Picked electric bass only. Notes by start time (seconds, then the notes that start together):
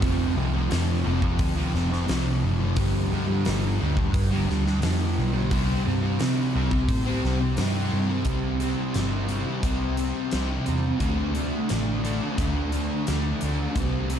0.03 F1
0.37 C2
0.71 F2
1.05 F1
1.39 D2
1.74 F1
2.09 C2
2.44 F#1
2.77 G1
3.12 G2
3.47 G1
3.82 D2
4.14 G1
4.51 D2
4.85 F2
5.18 B1
5.51 C2
5.87 G2
6.22 C3
6.55 C2
6.89 A2
7.24 C2
7.58 G2
7.92 G2
8.26 C2
8.95 G1
9.63 C2
10.33 C2
10.68 E2
11.00 D2
11.71 A1
12.38 D2
13.08 D2
13.42 D2
13.76 C2